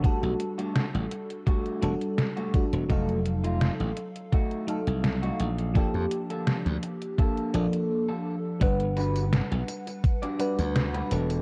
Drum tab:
HH |xxxxxxxxxxxxxxxx|xxxxxxxxxxxxxxxx|xxxxxxxxxxxx----|xxxxxxxxxxxxxxxx|
TB |----------------|----------------|----------------|x-xxx-xxx-xxx-xx|
SD |----o-------o---|----o-------o---|----o-----------|----o-------o---|
BD |o-------o-----o-|o-------o-------|o-------o-------|o-------o-------|